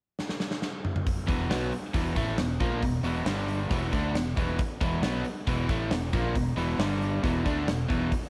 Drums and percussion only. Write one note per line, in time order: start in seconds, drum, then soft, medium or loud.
0.19 snare medium
0.29 snare medium
0.40 snare medium
0.51 snare medium
0.62 snare medium
0.85 mid tom medium
0.96 mid tom medium
1.07 kick loud
1.07 open hi-hat medium
1.29 kick loud
1.29 open hi-hat medium
1.51 snare loud
1.51 open hi-hat medium
1.72 open hi-hat medium
1.94 kick loud
1.94 open hi-hat medium
2.16 kick loud
2.16 open hi-hat medium
2.38 snare loud
2.38 open hi-hat medium
2.60 kick loud
2.60 open hi-hat medium
2.82 kick medium
2.82 open hi-hat medium
3.04 open hi-hat medium
3.26 snare loud
3.26 open hi-hat medium
3.48 open hi-hat medium
3.71 kick loud
3.71 open hi-hat medium
3.93 kick loud
3.93 open hi-hat medium
4.15 snare medium
4.15 open hi-hat medium
4.37 kick medium
4.37 open hi-hat medium
4.59 kick loud
4.59 open hi-hat medium
4.81 kick loud
4.81 open hi-hat medium
5.03 snare loud
5.03 open hi-hat medium
5.24 open hi-hat medium
5.47 kick medium
5.47 open hi-hat medium
5.69 kick loud
5.69 open hi-hat medium
5.91 snare loud
5.91 open hi-hat medium
6.13 kick loud
6.13 open hi-hat medium
6.35 kick medium
6.35 open hi-hat medium
6.58 open hi-hat medium
6.80 snare loud
6.80 open hi-hat medium
7.02 open hi-hat soft
7.24 kick loud
7.24 open hi-hat medium
7.46 kick medium
7.46 open hi-hat soft
7.68 snare loud
7.68 open hi-hat medium
7.90 kick medium
7.90 open hi-hat soft
8.12 kick loud
8.12 open hi-hat medium